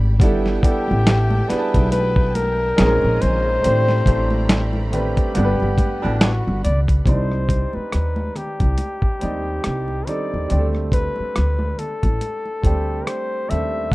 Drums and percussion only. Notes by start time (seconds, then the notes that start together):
0.20 kick, closed hi-hat, low conga
0.46 snare
0.63 kick, closed hi-hat
0.88 high conga
1.07 snare, closed hi-hat, muted conga
1.31 high conga
1.50 snare, closed hi-hat
1.74 kick, closed hi-hat
1.92 closed hi-hat, muted conga, high conga
2.16 kick
2.35 closed hi-hat, high conga
2.78 snare, closed hi-hat, muted conga
3.02 muted conga
3.21 closed hi-hat, low conga
3.64 closed hi-hat, muted conga, low conga
3.88 snare, high conga
4.06 kick, closed hi-hat
4.31 high conga
4.49 snare, closed hi-hat
4.73 muted conga, high conga
4.93 closed hi-hat, low conga
5.17 kick, closed hi-hat
5.35 closed hi-hat, muted conga, high conga
5.60 muted conga
5.78 kick, closed hi-hat, high conga
6.21 snare, closed hi-hat
6.64 closed hi-hat, low conga
6.88 kick, closed hi-hat
7.06 kick, closed hi-hat, muted conga, low conga
7.30 cross-stick, high conga
7.49 kick, closed hi-hat
7.73 high conga
7.92 cross-stick, closed hi-hat
8.16 muted conga, high conga
8.36 cross-stick, closed hi-hat, low conga
8.60 kick, closed hi-hat
8.78 closed hi-hat, high conga
9.02 kick, muted conga
9.21 closed hi-hat, high conga
9.64 cross-stick, closed hi-hat, muted conga
9.88 muted conga
10.07 closed hi-hat, low conga
10.50 closed hi-hat, muted conga, low conga
10.73 cross-stick, high conga
10.92 kick, closed hi-hat
11.16 high conga
11.36 cross-stick, closed hi-hat, muted conga
11.59 high conga
11.79 closed hi-hat, low conga
12.03 kick, closed hi-hat
12.21 closed hi-hat, high conga
12.46 muted conga
12.64 kick, closed hi-hat, high conga
13.07 cross-stick, closed hi-hat
13.50 closed hi-hat, low conga
13.92 kick